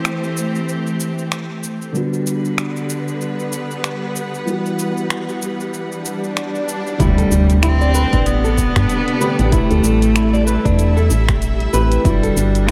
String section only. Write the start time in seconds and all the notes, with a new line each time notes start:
Already playing: E3 A3 C4 G4 C5
1.95 D3
2.05 G3
2.28 B4
2.43 F#5
2.61 B3
4.47 E3
7.65 C3 A4
7.81 D4
8.17 D5
10.00 E4
10.29 E5
12.34 D4
12.62 B4